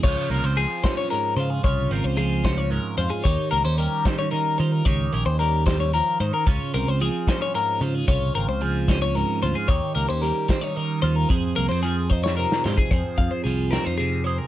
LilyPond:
<<
  \new Staff \with { instrumentName = "Clean electric guitar" } { \time 6/8 \key des \lydian \tempo 4. = 75 des''8 bes'16 c''16 aes'8 c''16 des''16 bes'8 c''16 aes'16 | des''8 bes'16 c''16 aes'8 c''16 des''16 bes'8 c''16 aes'16 | des''8 bes'16 c''16 bes'8 c''16 des''16 bes'8 c''16 bes'16 | des''8 bes'16 c''16 bes'8 c''16 des''16 bes'8 c''16 bes'16 |
des''8 bes'16 c''16 aes'8 c''16 des''16 bes'8 c''16 aes'16 | des''8 bes'16 c''16 aes'8 c''16 des''16 bes'8 c''16 aes'16 | des''8 bes'16 c''16 bes'8 c''16 des''16 bes'8 c''16 bes'16 | c''8 bes'16 c''16 aes'8 c''16 des''16 bes'8 c''16 aes'16 |
c''8 f''16 c''16 aes'8 bes'16 c''16 aes'8 c''16 bes'16 | }
  \new Staff \with { instrumentName = "Clean electric guitar" } { \time 6/8 \key des \lydian << { f'8 bes16 c'8. des'4 f'8 | f'8 c'4 des'4 f'8 | g'8 bes16 des'8. ees'4 f'8 | g'8 des'2~ des'8 |
f'8 c'4 des'4 f'8 | f'8 c'4 des'4 f'8 | g'8 bes16 des'8. c'16 ees'8. f'8 | aes'8 bes16 c'8. ees'4 f'16 aes'16 |
aes'4. c'16 ees'8. aes'8 | } \\ { <des f>4 f4 aes,4 | des4 f4 aes,4 | ees4 g4 ees4 | ees4 g8 g8 f8 ees8 |
des4 f4 aes,4 | des4 f4 aes,4 | ees4 g4 ees4 | f,4 f4 c4 |
f,4 f4 c4 | } >> }
  \new Staff \with { instrumentName = "Picked electric bass" } { \clef bass \time 6/8 \key des \lydian des,16 r16 c,16 des,8 r4 r16 des8 | c,8 aes,,16 des,4.~ des,16 f,16 r16 | ees,16 r16 des,16 ees,8 r4 r16 ees8 | des,8 bes,,16 ees,4.~ ees,16 aes,16 r16 |
des,16 r16 c,16 des,8 r4 r16 des8 | c,8 aes,,16 des,4.~ des,16 d,16 r16 | ees,16 r16 des,16 ees,8 r4 r16 ees,8 | f,8 c,16 f,4.~ f,16 aes,16 r16 |
f,16 r16 f,16 r16 c,8. f,4~ f,16 | }
  \new DrumStaff \with { instrumentName = "Drums" } \drummode { \time 6/8 <cymc bd>8 hh8 hh8 <hh bd sn>8 hh8 hh8 | <hh bd>8 hh8 hh8 <hh bd sn>8 hh8 hh8 | <hh bd>8 hh8 hh8 <hh bd sn>8 hh8 hh8 | <hh bd>8 hh8 hh8 <hh bd sn>8 hh8 hh8 |
<hh bd>8 hh8 hh8 <hh bd sn>8 hh8 hh8 | <hh bd>8 hh8 hh8 <hh bd sn>8 hh8 hh8 | <hh bd>8 hh8 hh8 <hh bd sn>8 hh8 hh8 | <hh bd>8 hh8 hh8 bd16 sn8 sn16 sn16 bd16 |
<hh bd>8 <hh bd>8 hh8 <hh sn>8 hh8 hh8 | }
>>